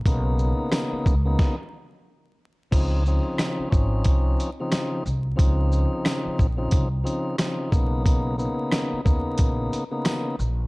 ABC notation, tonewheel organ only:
X:1
M:4/4
L:1/16
Q:"Swing 16ths" 1/4=90
K:Db
V:1 name="Tonewheel organ"
[D,B,_CE]6 z [D,B,CE]2 z6 z | [D,F,CE]2 [D,F,CE]4 [F,CDE]4- [F,CDE] [D,F,CE]3 z2 | [D,F,CE]6 z [D,F,CE]2 z [D,F,CE]2 [D,F,CE]2 [D,B,_CE]2 | [D,B,_CE]2 [D,B,CE]4 [D,B,CE]4- [D,B,CE] [D,B,CE]3 z2 |]